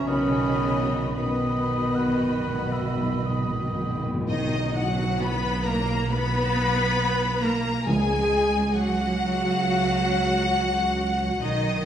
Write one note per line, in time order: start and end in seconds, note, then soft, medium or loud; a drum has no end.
0.07 4.04 B1 medium
0.07 0.16 B2 soft
0.07 1.14 C#3 medium
0.07 1.16 D#3 medium
0.07 1.13 B3 medium
0.07 0.82 C#4 medium
0.07 1.13 C#4 medium
0.07 1.14 F#4 medium
0.07 1.13 C#5 medium
0.07 1.14 D#5 medium
0.07 1.03 D#5 medium
0.07 1.13 B5 medium
0.17 0.25 B2 soft
0.26 0.34 B2 soft
0.35 0.41 B2 soft
0.42 0.50 B2 soft
0.51 0.59 B2 soft
0.60 0.68 B2 soft
0.69 0.76 B2 soft
0.78 0.85 B2 soft
0.87 0.94 B2 soft
0.95 1.03 B2 soft
1.04 1.11 B2 soft
1.12 1.20 B2 soft
1.12 3.73 B3 medium
1.12 4.03 B3 medium
1.12 4.04 F#4 medium
1.12 3.78 B4 medium
1.12 1.96 D#5 medium
1.12 4.03 D#5 medium
1.12 4.03 B5 medium
1.16 3.78 B2 medium
1.16 3.91 D#3 medium
1.16 3.79 B3 medium
1.16 3.91 B5 medium
1.21 1.27 B2 soft
1.29 1.36 B2 soft
1.37 1.45 B2 soft
1.46 1.54 B2 soft
1.55 1.62 B2 soft
1.64 1.71 B2 soft
1.72 1.79 B2 soft
1.81 1.88 B2 soft
1.89 1.96 B2 soft
1.95 2.04 B2 medium
1.95 2.74 F#5 medium
2.06 2.12 B2 medium
2.14 2.21 B2 medium
2.22 2.30 B2 medium
2.31 2.38 B2 medium
2.39 2.46 B2 medium
2.48 2.54 B2 medium
2.55 2.63 B2 medium
2.64 2.71 B2 medium
2.72 2.79 B2 medium
2.72 3.27 E5 medium
2.80 2.87 B2 medium
2.88 2.95 B2 medium
2.96 3.03 B2 medium
3.05 3.12 B2 medium
3.13 3.20 B2 medium
3.22 3.28 B2 medium
3.22 4.29 D#5 medium
3.30 3.37 B2 medium
3.39 3.45 B2 medium
3.46 3.54 B2 medium
3.55 3.62 B2 medium
3.64 3.71 B2 medium
3.73 3.80 B2 medium
3.81 3.88 B2 medium
3.90 3.96 B2 medium
3.97 4.05 B2 medium
4.06 4.13 B2 loud
4.14 4.20 B2 loud
4.21 4.28 B2 loud
4.28 7.83 B1 medium
4.28 4.71 D#3 medium
4.28 4.71 D#4 loud
4.28 4.71 D#5 loud
4.28 tam-tam medium
4.74 5.20 F#3 medium
4.74 5.20 F#4 medium
4.74 5.20 F#5 loud
4.74 5.21 F#5 loud
5.20 5.65 B3 medium
5.20 5.65 B4 loud
5.20 5.65 B5 loud
5.20 5.66 B5 loud
5.65 6.09 A#3 loud
5.65 6.09 A#4 loud
5.65 6.09 A#5 medium
5.65 6.10 A#5 loud
6.08 7.43 B3 loud
6.08 7.43 B4 loud
6.08 7.40 B5 loud
6.08 7.44 B5 loud
7.42 7.86 A#3 medium
7.42 7.87 A#4 medium
7.42 7.87 A#5 medium
7.42 7.87 A#5 loud
7.86 11.38 C#2 medium
7.86 9.16 C#3 loud
7.86 8.73 G#3 loud
7.86 8.73 G#4 loud
7.86 8.73 G#5 loud
7.86 8.75 G#5 loud
8.74 11.41 F#3 loud
8.74 11.42 F#4 loud
8.74 11.41 F#5 loud
8.74 11.42 F#5 loud
11.40 11.85 B1 medium
11.40 11.84 D#3 medium
11.40 11.85 D#4 loud
11.40 11.85 D#5 loud